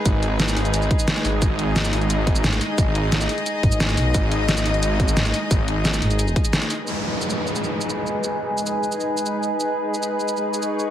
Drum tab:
HH |x-x-x-oxx-x-xxo-|x-x-x-oxx-x-xxo-|x-x-x-oxx-x-xxo-|x-x-x-oxx-x-xxo-|
SH |x---xx-xxx-xxxx-|x---xx--x--xxxx-|x---xx--x--xxxx-|x---xx--x--xxxx-|
SD |----o-------o---|----o-------o---|----o-------o---|----o-------o---|
BD |o---------o-----|o---------o-----|o---------o-----|o---------o-----|

HH |x-x-x-oxx-xxxxo-|----------------|----------------|----------------|
SH |x---xx-xxx-xxxx-|x---xx-xxx-xx-x-|x---xx-xxx-xx-x-|x---xx-xxx-xx-x-|
SD |----o-------o---|----------------|----------------|----------------|
BD |o---------o-----|----------------|----------------|----------------|